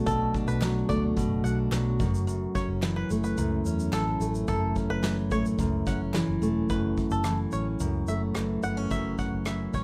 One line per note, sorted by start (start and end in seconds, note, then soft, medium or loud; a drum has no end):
0.00 0.61 F#3 medium
0.00 0.89 A3 medium
0.00 0.33 D4 medium
0.06 0.29 B1 medium
0.06 1.15 B2 medium
0.06 0.33 A4 medium
0.06 kick medium
0.06 shaker medium
0.34 1.44 D4 medium
0.34 kick medium
0.34 shaker soft
0.48 0.82 B1 loud
0.48 0.74 B4 medium
0.48 shaker soft
0.62 1.71 F#3 medium
0.62 snare loud
0.62 clap medium
0.62 shaker medium
0.89 1.12 D2 medium
0.89 3.10 A3 medium
0.89 1.02 D5 medium
0.89 kick medium
0.89 shaker soft
1.17 1.40 F#1 medium
1.17 2.00 B2 medium
1.17 kick medium
1.17 shaker medium
1.44 1.67 B1 medium
1.44 2.06 D4 medium
1.44 1.57 F#5 medium
1.44 shaker medium
1.72 2.02 B1 medium
1.72 2.82 F#3 medium
1.72 snare loud
1.72 clap medium
1.72 shaker medium
2.00 2.45 F#1 medium
2.00 2.26 F#2 medium
2.00 kick loud
2.00 shaker medium
2.15 shaker medium
2.27 3.36 F#2 medium
2.27 shaker medium
2.55 3.65 C#4 medium
2.55 2.68 C#5 medium
2.55 kick medium
2.55 shaker soft
2.68 3.03 F#1 medium
2.82 3.92 E3 medium
2.82 snare loud
2.82 clap medium
2.82 shaker medium
2.96 3.10 B4 medium
3.10 3.33 F#1 medium
3.10 4.20 A3 medium
3.10 shaker medium
3.24 3.63 B4 medium
3.24 shaker medium
3.38 3.61 C#2 medium
3.38 4.47 F#2 medium
3.38 shaker medium
3.65 3.88 E2 medium
3.65 4.75 C#4 medium
3.65 shaker medium
3.79 shaker medium
3.93 4.16 A1 medium
3.93 5.03 E3 medium
3.93 4.32 A4 medium
3.93 snare loud
3.93 clap medium
3.93 shaker medium
4.20 4.43 A1 medium
4.20 5.31 A3 medium
4.20 shaker medium
4.35 shaker medium
4.48 4.71 F#1 loud
4.48 5.58 F#2 medium
4.48 4.75 A4 loud
4.48 kick loud
4.48 shaker medium
4.75 5.87 C#4 medium
4.75 kick medium
4.75 shaker soft
4.89 5.31 F#1 medium
4.89 5.16 B4 medium
5.03 6.14 E3 medium
5.03 snare loud
5.03 clap medium
5.03 shaker medium
5.31 5.54 A1 medium
5.31 6.41 A3 medium
5.31 5.45 C#5 medium
5.31 kick medium
5.31 shaker medium
5.46 shaker medium
5.59 5.82 C#2 medium
5.59 6.69 F#2 medium
5.59 kick medium
5.59 shaker medium
5.86 6.21 F#1 medium
5.86 7.52 C#4 medium
5.86 6.00 F#5 medium
5.86 kick medium
5.86 snare soft
5.86 shaker medium
6.14 7.24 E3 medium
6.14 snare medium
6.14 clap medium
6.14 shaker medium
6.28 6.40 F#1 medium
6.42 6.65 E1 loud
6.42 8.08 A3 medium
6.42 shaker medium
6.70 6.92 F#1 medium
6.70 7.79 F#2 medium
6.70 6.96 B4 medium
6.70 kick medium
6.70 shaker medium
6.97 kick medium
6.97 shaker soft
7.11 7.45 F#1 medium
7.11 7.38 A4 medium
7.11 shaker soft
7.24 8.35 E3 medium
7.24 cross-stick loud
7.24 clap medium
7.24 shaker medium
7.52 7.75 A1 medium
7.52 8.62 C#4 soft
7.52 7.66 C#5 medium
7.52 shaker soft
7.80 8.03 C#2 medium
7.80 8.89 F#2 medium
7.80 shaker medium
8.07 8.30 F#1 medium
8.07 9.84 A3 soft
8.07 8.21 E5 medium
8.07 shaker medium
8.35 8.58 F#1 medium
8.35 9.45 E3 medium
8.35 cross-stick loud
8.35 clap medium
8.35 shaker medium
8.63 8.86 G1 medium
8.63 8.77 B3 medium
8.63 8.77 F#5 medium
8.63 shaker medium
8.77 9.72 C#4 medium
8.91 9.14 F#1 medium
8.91 9.84 F#2 medium
8.91 9.17 E5 medium
8.91 kick medium
8.91 shaker medium
9.19 9.45 F#5 medium
9.19 kick medium
9.19 shaker soft
9.32 9.66 F#1 medium
9.46 9.84 E3 medium
9.46 9.73 E5 medium
9.46 cross-stick loud
9.46 clap medium
9.46 shaker medium
9.73 9.84 A1 medium
9.73 9.84 C#4 soft
9.73 9.84 C#5 medium
9.73 kick medium
9.73 shaker soft